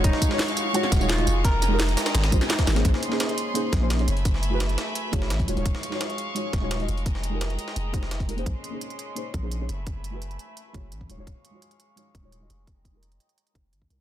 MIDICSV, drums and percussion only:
0, 0, Header, 1, 2, 480
1, 0, Start_track
1, 0, Key_signature, -5, "minor"
1, 0, Tempo, 350877
1, 59, Time_signature, 4, 2, 24, 8
1, 19163, End_track
2, 0, Start_track
2, 0, Title_t, "Drums"
2, 57, Note_on_c, 9, 36, 113
2, 58, Note_on_c, 9, 42, 96
2, 59, Note_off_c, 9, 42, 0
2, 59, Note_on_c, 9, 42, 92
2, 183, Note_on_c, 9, 38, 57
2, 194, Note_off_c, 9, 36, 0
2, 196, Note_off_c, 9, 42, 0
2, 297, Note_on_c, 9, 36, 58
2, 298, Note_on_c, 9, 42, 75
2, 298, Note_on_c, 9, 54, 69
2, 300, Note_off_c, 9, 42, 0
2, 300, Note_on_c, 9, 42, 67
2, 320, Note_off_c, 9, 38, 0
2, 423, Note_on_c, 9, 38, 48
2, 434, Note_off_c, 9, 36, 0
2, 434, Note_off_c, 9, 54, 0
2, 437, Note_off_c, 9, 42, 0
2, 537, Note_off_c, 9, 38, 0
2, 537, Note_on_c, 9, 38, 124
2, 537, Note_on_c, 9, 42, 97
2, 540, Note_off_c, 9, 38, 0
2, 540, Note_off_c, 9, 42, 0
2, 540, Note_on_c, 9, 38, 116
2, 540, Note_on_c, 9, 42, 88
2, 660, Note_off_c, 9, 42, 0
2, 660, Note_on_c, 9, 42, 37
2, 660, Note_on_c, 9, 54, 31
2, 677, Note_off_c, 9, 38, 0
2, 777, Note_off_c, 9, 42, 0
2, 777, Note_off_c, 9, 54, 0
2, 777, Note_on_c, 9, 42, 69
2, 777, Note_on_c, 9, 54, 63
2, 779, Note_off_c, 9, 42, 0
2, 779, Note_on_c, 9, 42, 70
2, 914, Note_off_c, 9, 54, 0
2, 916, Note_off_c, 9, 42, 0
2, 1018, Note_on_c, 9, 42, 90
2, 1019, Note_off_c, 9, 42, 0
2, 1019, Note_on_c, 9, 42, 99
2, 1141, Note_on_c, 9, 40, 50
2, 1156, Note_off_c, 9, 42, 0
2, 1257, Note_on_c, 9, 36, 97
2, 1258, Note_on_c, 9, 38, 54
2, 1258, Note_on_c, 9, 42, 72
2, 1260, Note_off_c, 9, 42, 0
2, 1260, Note_on_c, 9, 42, 69
2, 1260, Note_on_c, 9, 54, 63
2, 1278, Note_off_c, 9, 40, 0
2, 1382, Note_off_c, 9, 54, 0
2, 1382, Note_on_c, 9, 54, 29
2, 1394, Note_off_c, 9, 36, 0
2, 1395, Note_off_c, 9, 38, 0
2, 1397, Note_off_c, 9, 42, 0
2, 1498, Note_on_c, 9, 38, 117
2, 1498, Note_on_c, 9, 42, 91
2, 1499, Note_off_c, 9, 38, 0
2, 1499, Note_off_c, 9, 42, 0
2, 1499, Note_on_c, 9, 38, 113
2, 1499, Note_on_c, 9, 42, 93
2, 1519, Note_off_c, 9, 54, 0
2, 1621, Note_off_c, 9, 42, 0
2, 1621, Note_on_c, 9, 40, 33
2, 1621, Note_on_c, 9, 42, 44
2, 1636, Note_off_c, 9, 38, 0
2, 1736, Note_off_c, 9, 42, 0
2, 1736, Note_on_c, 9, 42, 82
2, 1738, Note_off_c, 9, 42, 0
2, 1738, Note_on_c, 9, 42, 69
2, 1738, Note_on_c, 9, 54, 60
2, 1758, Note_off_c, 9, 40, 0
2, 1875, Note_off_c, 9, 42, 0
2, 1875, Note_off_c, 9, 54, 0
2, 1977, Note_on_c, 9, 36, 115
2, 1978, Note_on_c, 9, 38, 49
2, 1978, Note_on_c, 9, 42, 65
2, 2114, Note_off_c, 9, 36, 0
2, 2115, Note_off_c, 9, 38, 0
2, 2115, Note_off_c, 9, 42, 0
2, 2217, Note_on_c, 9, 42, 68
2, 2218, Note_off_c, 9, 42, 0
2, 2218, Note_on_c, 9, 40, 36
2, 2218, Note_on_c, 9, 42, 71
2, 2218, Note_on_c, 9, 54, 66
2, 2354, Note_off_c, 9, 40, 0
2, 2354, Note_off_c, 9, 42, 0
2, 2354, Note_off_c, 9, 54, 0
2, 2456, Note_on_c, 9, 38, 122
2, 2456, Note_on_c, 9, 42, 100
2, 2457, Note_off_c, 9, 38, 0
2, 2457, Note_off_c, 9, 42, 0
2, 2457, Note_on_c, 9, 38, 122
2, 2457, Note_on_c, 9, 42, 89
2, 2580, Note_off_c, 9, 42, 0
2, 2580, Note_on_c, 9, 42, 40
2, 2580, Note_on_c, 9, 54, 30
2, 2594, Note_off_c, 9, 38, 0
2, 2696, Note_off_c, 9, 42, 0
2, 2696, Note_on_c, 9, 38, 107
2, 2696, Note_on_c, 9, 42, 84
2, 2697, Note_off_c, 9, 54, 0
2, 2697, Note_on_c, 9, 46, 75
2, 2697, Note_on_c, 9, 54, 61
2, 2819, Note_off_c, 9, 38, 0
2, 2819, Note_off_c, 9, 42, 0
2, 2819, Note_on_c, 9, 38, 108
2, 2819, Note_on_c, 9, 42, 81
2, 2822, Note_off_c, 9, 42, 0
2, 2822, Note_on_c, 9, 42, 37
2, 2834, Note_off_c, 9, 46, 0
2, 2834, Note_off_c, 9, 54, 0
2, 2935, Note_off_c, 9, 38, 0
2, 2935, Note_off_c, 9, 42, 0
2, 2935, Note_on_c, 9, 38, 113
2, 2935, Note_on_c, 9, 42, 83
2, 2937, Note_off_c, 9, 42, 0
2, 2937, Note_on_c, 9, 42, 97
2, 3059, Note_off_c, 9, 38, 0
2, 3059, Note_off_c, 9, 42, 0
2, 3059, Note_on_c, 9, 38, 108
2, 3059, Note_on_c, 9, 42, 41
2, 3177, Note_off_c, 9, 42, 0
2, 3177, Note_on_c, 9, 36, 104
2, 3177, Note_on_c, 9, 42, 71
2, 3178, Note_off_c, 9, 42, 0
2, 3178, Note_on_c, 9, 42, 71
2, 3178, Note_on_c, 9, 54, 63
2, 3196, Note_off_c, 9, 38, 0
2, 3300, Note_on_c, 9, 38, 53
2, 3301, Note_off_c, 9, 54, 0
2, 3301, Note_on_c, 9, 40, 57
2, 3301, Note_on_c, 9, 54, 29
2, 3314, Note_off_c, 9, 36, 0
2, 3315, Note_off_c, 9, 42, 0
2, 3417, Note_off_c, 9, 38, 0
2, 3417, Note_on_c, 9, 38, 103
2, 3417, Note_on_c, 9, 42, 80
2, 3418, Note_off_c, 9, 38, 0
2, 3418, Note_off_c, 9, 42, 0
2, 3418, Note_on_c, 9, 38, 111
2, 3418, Note_on_c, 9, 42, 95
2, 3438, Note_off_c, 9, 40, 0
2, 3438, Note_off_c, 9, 54, 0
2, 3539, Note_off_c, 9, 38, 0
2, 3539, Note_off_c, 9, 42, 0
2, 3539, Note_on_c, 9, 38, 104
2, 3539, Note_on_c, 9, 42, 79
2, 3541, Note_on_c, 9, 36, 58
2, 3656, Note_off_c, 9, 38, 0
2, 3656, Note_off_c, 9, 42, 0
2, 3656, Note_on_c, 9, 38, 106
2, 3656, Note_on_c, 9, 42, 82
2, 3658, Note_off_c, 9, 38, 0
2, 3658, Note_off_c, 9, 42, 0
2, 3658, Note_on_c, 9, 38, 93
2, 3658, Note_on_c, 9, 42, 70
2, 3658, Note_on_c, 9, 54, 62
2, 3678, Note_off_c, 9, 36, 0
2, 3780, Note_off_c, 9, 38, 0
2, 3780, Note_off_c, 9, 42, 0
2, 3780, Note_on_c, 9, 38, 103
2, 3780, Note_on_c, 9, 42, 74
2, 3795, Note_off_c, 9, 54, 0
2, 3898, Note_off_c, 9, 42, 0
2, 3898, Note_on_c, 9, 36, 114
2, 3898, Note_on_c, 9, 42, 88
2, 3899, Note_off_c, 9, 42, 0
2, 3899, Note_on_c, 9, 42, 89
2, 3917, Note_off_c, 9, 38, 0
2, 4023, Note_on_c, 9, 38, 56
2, 4035, Note_off_c, 9, 36, 0
2, 4036, Note_off_c, 9, 42, 0
2, 4140, Note_on_c, 9, 42, 67
2, 4159, Note_off_c, 9, 38, 0
2, 4264, Note_on_c, 9, 38, 45
2, 4277, Note_off_c, 9, 42, 0
2, 4378, Note_on_c, 9, 42, 95
2, 4380, Note_off_c, 9, 38, 0
2, 4380, Note_off_c, 9, 42, 0
2, 4380, Note_on_c, 9, 38, 114
2, 4380, Note_on_c, 9, 42, 86
2, 4503, Note_off_c, 9, 42, 0
2, 4503, Note_on_c, 9, 42, 38
2, 4517, Note_off_c, 9, 38, 0
2, 4620, Note_off_c, 9, 42, 0
2, 4620, Note_on_c, 9, 42, 68
2, 4757, Note_off_c, 9, 42, 0
2, 4859, Note_on_c, 9, 42, 95
2, 4860, Note_off_c, 9, 42, 0
2, 4860, Note_on_c, 9, 42, 83
2, 4996, Note_off_c, 9, 42, 0
2, 5098, Note_on_c, 9, 36, 98
2, 5099, Note_on_c, 9, 38, 53
2, 5099, Note_on_c, 9, 42, 68
2, 5100, Note_off_c, 9, 42, 0
2, 5100, Note_on_c, 9, 42, 65
2, 5235, Note_off_c, 9, 36, 0
2, 5236, Note_off_c, 9, 38, 0
2, 5237, Note_off_c, 9, 42, 0
2, 5339, Note_on_c, 9, 38, 112
2, 5339, Note_on_c, 9, 42, 91
2, 5461, Note_off_c, 9, 42, 0
2, 5461, Note_on_c, 9, 42, 41
2, 5476, Note_off_c, 9, 38, 0
2, 5578, Note_off_c, 9, 42, 0
2, 5578, Note_on_c, 9, 42, 65
2, 5579, Note_off_c, 9, 42, 0
2, 5579, Note_on_c, 9, 42, 64
2, 5700, Note_off_c, 9, 42, 0
2, 5700, Note_on_c, 9, 42, 39
2, 5818, Note_off_c, 9, 42, 0
2, 5818, Note_on_c, 9, 36, 118
2, 5818, Note_on_c, 9, 42, 86
2, 5941, Note_on_c, 9, 38, 35
2, 5955, Note_off_c, 9, 36, 0
2, 5955, Note_off_c, 9, 42, 0
2, 6057, Note_on_c, 9, 42, 63
2, 6058, Note_off_c, 9, 42, 0
2, 6058, Note_on_c, 9, 42, 67
2, 6077, Note_off_c, 9, 38, 0
2, 6195, Note_off_c, 9, 42, 0
2, 6296, Note_on_c, 9, 42, 93
2, 6297, Note_off_c, 9, 42, 0
2, 6297, Note_on_c, 9, 38, 111
2, 6297, Note_on_c, 9, 42, 83
2, 6420, Note_off_c, 9, 42, 0
2, 6420, Note_on_c, 9, 42, 37
2, 6434, Note_off_c, 9, 38, 0
2, 6537, Note_off_c, 9, 42, 0
2, 6537, Note_on_c, 9, 42, 64
2, 6538, Note_off_c, 9, 42, 0
2, 6538, Note_on_c, 9, 38, 99
2, 6538, Note_on_c, 9, 42, 77
2, 6674, Note_off_c, 9, 38, 0
2, 6674, Note_off_c, 9, 42, 0
2, 6777, Note_on_c, 9, 42, 90
2, 6914, Note_off_c, 9, 42, 0
2, 7016, Note_on_c, 9, 42, 67
2, 7017, Note_on_c, 9, 36, 105
2, 7019, Note_off_c, 9, 42, 0
2, 7019, Note_on_c, 9, 42, 65
2, 7139, Note_on_c, 9, 38, 51
2, 7154, Note_off_c, 9, 36, 0
2, 7155, Note_off_c, 9, 42, 0
2, 7255, Note_off_c, 9, 38, 0
2, 7255, Note_on_c, 9, 38, 110
2, 7255, Note_on_c, 9, 42, 83
2, 7258, Note_off_c, 9, 42, 0
2, 7258, Note_on_c, 9, 42, 86
2, 7380, Note_off_c, 9, 42, 0
2, 7380, Note_on_c, 9, 36, 59
2, 7380, Note_on_c, 9, 42, 41
2, 7392, Note_off_c, 9, 38, 0
2, 7496, Note_off_c, 9, 42, 0
2, 7496, Note_on_c, 9, 42, 65
2, 7498, Note_off_c, 9, 42, 0
2, 7498, Note_on_c, 9, 42, 61
2, 7517, Note_off_c, 9, 36, 0
2, 7619, Note_off_c, 9, 42, 0
2, 7619, Note_on_c, 9, 42, 41
2, 7737, Note_off_c, 9, 42, 0
2, 7737, Note_on_c, 9, 36, 119
2, 7737, Note_on_c, 9, 42, 86
2, 7738, Note_off_c, 9, 42, 0
2, 7738, Note_on_c, 9, 42, 82
2, 7861, Note_on_c, 9, 38, 54
2, 7874, Note_off_c, 9, 36, 0
2, 7874, Note_off_c, 9, 42, 0
2, 7977, Note_on_c, 9, 42, 65
2, 7978, Note_off_c, 9, 42, 0
2, 7978, Note_on_c, 9, 42, 63
2, 7998, Note_off_c, 9, 38, 0
2, 8101, Note_on_c, 9, 38, 43
2, 8115, Note_off_c, 9, 42, 0
2, 8218, Note_off_c, 9, 38, 0
2, 8218, Note_on_c, 9, 38, 109
2, 8218, Note_on_c, 9, 42, 88
2, 8341, Note_off_c, 9, 42, 0
2, 8341, Note_on_c, 9, 42, 36
2, 8355, Note_off_c, 9, 38, 0
2, 8458, Note_off_c, 9, 42, 0
2, 8458, Note_on_c, 9, 42, 68
2, 8595, Note_off_c, 9, 42, 0
2, 8697, Note_on_c, 9, 42, 84
2, 8698, Note_off_c, 9, 42, 0
2, 8698, Note_on_c, 9, 42, 87
2, 8835, Note_off_c, 9, 42, 0
2, 8937, Note_on_c, 9, 42, 62
2, 8938, Note_on_c, 9, 36, 102
2, 8939, Note_off_c, 9, 42, 0
2, 8939, Note_on_c, 9, 38, 52
2, 8939, Note_on_c, 9, 42, 64
2, 9074, Note_off_c, 9, 36, 0
2, 9075, Note_off_c, 9, 38, 0
2, 9075, Note_off_c, 9, 42, 0
2, 9178, Note_on_c, 9, 42, 83
2, 9179, Note_off_c, 9, 42, 0
2, 9179, Note_on_c, 9, 38, 112
2, 9179, Note_on_c, 9, 42, 81
2, 9302, Note_off_c, 9, 42, 0
2, 9302, Note_on_c, 9, 42, 41
2, 9316, Note_off_c, 9, 38, 0
2, 9418, Note_off_c, 9, 42, 0
2, 9418, Note_on_c, 9, 42, 61
2, 9419, Note_off_c, 9, 42, 0
2, 9419, Note_on_c, 9, 42, 65
2, 9542, Note_off_c, 9, 42, 0
2, 9542, Note_on_c, 9, 42, 39
2, 9657, Note_off_c, 9, 42, 0
2, 9657, Note_on_c, 9, 42, 81
2, 9658, Note_on_c, 9, 36, 110
2, 9659, Note_off_c, 9, 42, 0
2, 9659, Note_on_c, 9, 42, 84
2, 9782, Note_on_c, 9, 38, 36
2, 9795, Note_off_c, 9, 36, 0
2, 9796, Note_off_c, 9, 42, 0
2, 9897, Note_on_c, 9, 42, 61
2, 9900, Note_off_c, 9, 42, 0
2, 9900, Note_on_c, 9, 42, 61
2, 9919, Note_off_c, 9, 38, 0
2, 10036, Note_off_c, 9, 42, 0
2, 10138, Note_on_c, 9, 42, 83
2, 10139, Note_off_c, 9, 42, 0
2, 10139, Note_on_c, 9, 38, 109
2, 10139, Note_on_c, 9, 42, 80
2, 10261, Note_off_c, 9, 42, 0
2, 10261, Note_on_c, 9, 42, 33
2, 10276, Note_off_c, 9, 38, 0
2, 10378, Note_off_c, 9, 42, 0
2, 10378, Note_on_c, 9, 42, 65
2, 10502, Note_on_c, 9, 38, 45
2, 10515, Note_off_c, 9, 42, 0
2, 10619, Note_on_c, 9, 42, 84
2, 10639, Note_off_c, 9, 38, 0
2, 10756, Note_off_c, 9, 42, 0
2, 10857, Note_on_c, 9, 36, 104
2, 10858, Note_on_c, 9, 42, 66
2, 10860, Note_off_c, 9, 42, 0
2, 10860, Note_on_c, 9, 42, 59
2, 10981, Note_on_c, 9, 38, 49
2, 10994, Note_off_c, 9, 36, 0
2, 10997, Note_off_c, 9, 42, 0
2, 11098, Note_off_c, 9, 38, 0
2, 11098, Note_on_c, 9, 38, 108
2, 11098, Note_on_c, 9, 42, 79
2, 11220, Note_on_c, 9, 36, 61
2, 11222, Note_off_c, 9, 42, 0
2, 11222, Note_on_c, 9, 42, 42
2, 11235, Note_off_c, 9, 38, 0
2, 11339, Note_off_c, 9, 42, 0
2, 11339, Note_on_c, 9, 42, 64
2, 11356, Note_off_c, 9, 36, 0
2, 11461, Note_off_c, 9, 42, 0
2, 11461, Note_on_c, 9, 42, 38
2, 11576, Note_on_c, 9, 36, 107
2, 11579, Note_off_c, 9, 42, 0
2, 11579, Note_on_c, 9, 42, 80
2, 11713, Note_off_c, 9, 36, 0
2, 11716, Note_off_c, 9, 42, 0
2, 11820, Note_on_c, 9, 42, 62
2, 11957, Note_off_c, 9, 42, 0
2, 12057, Note_on_c, 9, 42, 84
2, 12181, Note_off_c, 9, 42, 0
2, 12181, Note_on_c, 9, 42, 33
2, 12297, Note_off_c, 9, 42, 0
2, 12297, Note_on_c, 9, 42, 60
2, 12434, Note_off_c, 9, 42, 0
2, 12537, Note_on_c, 9, 42, 85
2, 12674, Note_off_c, 9, 42, 0
2, 12777, Note_on_c, 9, 36, 95
2, 12777, Note_on_c, 9, 42, 57
2, 12913, Note_off_c, 9, 36, 0
2, 12914, Note_off_c, 9, 42, 0
2, 13017, Note_on_c, 9, 42, 80
2, 13154, Note_off_c, 9, 42, 0
2, 13257, Note_on_c, 9, 42, 59
2, 13394, Note_off_c, 9, 42, 0
2, 13497, Note_on_c, 9, 36, 104
2, 13497, Note_on_c, 9, 42, 82
2, 13633, Note_off_c, 9, 42, 0
2, 13634, Note_off_c, 9, 36, 0
2, 13737, Note_on_c, 9, 42, 62
2, 13874, Note_off_c, 9, 42, 0
2, 13977, Note_on_c, 9, 42, 87
2, 14102, Note_off_c, 9, 42, 0
2, 14102, Note_on_c, 9, 42, 33
2, 14218, Note_off_c, 9, 42, 0
2, 14218, Note_on_c, 9, 42, 60
2, 14355, Note_off_c, 9, 42, 0
2, 14459, Note_on_c, 9, 42, 84
2, 14595, Note_off_c, 9, 42, 0
2, 14698, Note_on_c, 9, 36, 93
2, 14698, Note_on_c, 9, 42, 60
2, 14835, Note_off_c, 9, 36, 0
2, 14835, Note_off_c, 9, 42, 0
2, 14937, Note_on_c, 9, 42, 78
2, 15061, Note_on_c, 9, 36, 54
2, 15074, Note_off_c, 9, 42, 0
2, 15179, Note_on_c, 9, 42, 60
2, 15198, Note_off_c, 9, 36, 0
2, 15316, Note_off_c, 9, 42, 0
2, 15418, Note_on_c, 9, 36, 99
2, 15419, Note_on_c, 9, 42, 87
2, 15555, Note_off_c, 9, 36, 0
2, 15556, Note_off_c, 9, 42, 0
2, 15658, Note_on_c, 9, 42, 65
2, 15795, Note_off_c, 9, 42, 0
2, 15899, Note_on_c, 9, 42, 89
2, 16021, Note_off_c, 9, 42, 0
2, 16021, Note_on_c, 9, 42, 34
2, 16138, Note_off_c, 9, 42, 0
2, 16138, Note_on_c, 9, 42, 62
2, 16275, Note_off_c, 9, 42, 0
2, 16379, Note_on_c, 9, 42, 90
2, 16515, Note_off_c, 9, 42, 0
2, 16618, Note_on_c, 9, 36, 89
2, 16619, Note_on_c, 9, 42, 62
2, 16754, Note_off_c, 9, 36, 0
2, 16756, Note_off_c, 9, 42, 0
2, 16860, Note_on_c, 9, 42, 85
2, 16997, Note_off_c, 9, 42, 0
2, 17100, Note_on_c, 9, 42, 63
2, 17236, Note_off_c, 9, 42, 0
2, 17338, Note_on_c, 9, 36, 101
2, 17339, Note_on_c, 9, 42, 87
2, 17475, Note_off_c, 9, 36, 0
2, 17476, Note_off_c, 9, 42, 0
2, 17578, Note_on_c, 9, 36, 50
2, 17581, Note_on_c, 9, 42, 64
2, 17715, Note_off_c, 9, 36, 0
2, 17718, Note_off_c, 9, 42, 0
2, 17821, Note_on_c, 9, 42, 91
2, 17944, Note_off_c, 9, 42, 0
2, 17944, Note_on_c, 9, 42, 36
2, 18061, Note_off_c, 9, 42, 0
2, 18061, Note_on_c, 9, 42, 62
2, 18183, Note_off_c, 9, 42, 0
2, 18183, Note_on_c, 9, 42, 34
2, 18301, Note_off_c, 9, 42, 0
2, 18301, Note_on_c, 9, 42, 91
2, 18423, Note_off_c, 9, 42, 0
2, 18423, Note_on_c, 9, 42, 37
2, 18538, Note_on_c, 9, 36, 92
2, 18541, Note_off_c, 9, 42, 0
2, 18541, Note_on_c, 9, 42, 61
2, 18675, Note_off_c, 9, 36, 0
2, 18678, Note_off_c, 9, 42, 0
2, 18781, Note_on_c, 9, 42, 87
2, 18901, Note_on_c, 9, 36, 54
2, 18918, Note_off_c, 9, 42, 0
2, 19021, Note_on_c, 9, 42, 62
2, 19038, Note_off_c, 9, 36, 0
2, 19158, Note_off_c, 9, 42, 0
2, 19163, End_track
0, 0, End_of_file